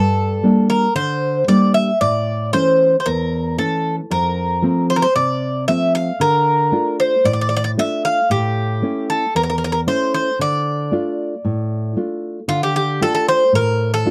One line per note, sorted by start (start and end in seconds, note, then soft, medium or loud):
0.00 0.42 G2 medium
0.00 0.69 A4 medium
0.43 0.85 G3 medium
0.43 0.86 A#3 medium
0.43 0.86 D4 medium
0.70 0.95 A#4 medium
0.95 1.46 D3 medium
0.95 1.45 C5 loud
1.48 1.90 G3 medium
1.48 1.90 A#3 soft
1.48 1.91 D4 medium
1.48 1.73 D5 medium
1.74 2.01 E5 medium
2.01 2.52 A2 medium
2.01 2.53 D5 medium
2.53 2.95 E3 medium
2.53 2.95 A3 soft
2.53 2.95 C#4 medium
2.53 2.95 C5 loud
3.00 3.06 C5 medium
3.06 3.57 E2 medium
3.06 3.58 A#4 medium
3.58 4.00 E3 soft
3.58 4.00 A3 soft
3.58 4.00 C#4 medium
3.58 3.95 A4 medium
4.11 4.61 F2 medium
4.11 4.86 A#4 medium
4.62 5.04 F3 medium
4.62 5.05 A3 soft
4.62 5.05 C4 medium
4.90 4.96 C5 medium
4.96 5.02 A#4 medium
5.02 5.14 C5 medium
5.16 5.66 C3 medium
5.16 5.64 D5 loud
5.68 6.10 F3 soft
5.68 6.10 A3 soft
5.68 6.10 C4 medium
5.68 5.92 E5 medium
5.95 6.19 F5 medium
6.20 6.71 D3 medium
6.20 6.95 A#4 loud
6.72 7.14 A3 medium
6.72 7.14 D4 medium
6.72 7.15 F4 medium
7.00 7.26 C5 medium
7.24 7.75 A2 medium
7.24 7.32 D5 loud
7.33 7.40 D5 medium
7.41 7.47 D5 medium
7.49 7.55 D5 medium
7.57 7.63 D5 medium
7.64 7.70 D5 medium
7.77 8.19 A3 soft
7.77 8.19 D4 soft
7.77 8.20 F4 medium
7.77 8.03 E5 loud
8.05 8.29 F5 medium
8.30 8.81 A2 medium
8.30 9.09 G4 medium
8.82 9.24 A3 medium
8.82 9.24 C#4 soft
8.82 9.25 E4 medium
9.10 9.33 A4 medium
9.35 9.85 E2 medium
9.35 9.42 A#4 medium
9.43 9.48 A#4 medium
9.50 9.57 A#4 medium
9.58 9.63 A#4 medium
9.64 9.71 A#4 medium
9.72 9.80 A#4 medium
9.87 10.29 A3 soft
9.87 10.29 C#4 soft
9.87 10.29 E4 medium
9.87 10.12 C5 medium
10.14 10.38 C5 medium
10.39 10.90 D3 medium
10.39 11.93 D5 medium
10.91 11.33 A3 medium
10.91 11.34 D4 soft
10.91 11.34 F4 medium
11.45 11.95 A2 medium
11.96 12.38 A3 soft
11.96 12.38 D4 soft
11.96 12.39 F4 medium
12.48 12.99 D3 medium
12.48 12.62 F4 medium
12.63 12.75 G4 medium
12.76 13.00 G4 medium
13.01 13.43 A3 medium
13.01 13.43 D4 soft
13.01 13.43 F4 medium
13.01 13.13 A4 medium
13.15 13.28 A4 medium
13.28 13.52 C5 loud
13.53 14.04 A2 medium
13.53 13.93 A#4 loud
13.94 14.11 A4 loud
14.05 14.11 A3 medium
14.05 14.11 D4 soft
14.05 14.11 F4 medium